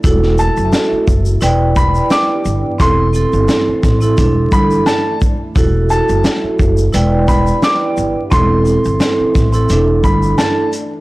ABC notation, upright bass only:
X:1
M:4/4
L:1/16
Q:"Swing 16ths" 1/4=87
K:Em
V:1 name="Upright bass" clef=bass
E,,,3 F,,, z2 F,,,2 E,,,4 z2 G,,, z | E,,,3 G,,, z2 A,,,2 E,,,2 G,,,2 z4 | E,,,3 F,,, z2 F,,,2 E,,,4 z2 G,,, z | E,,,3 G,,, z2 A,,,2 E,,,2 G,,,2 z4 |]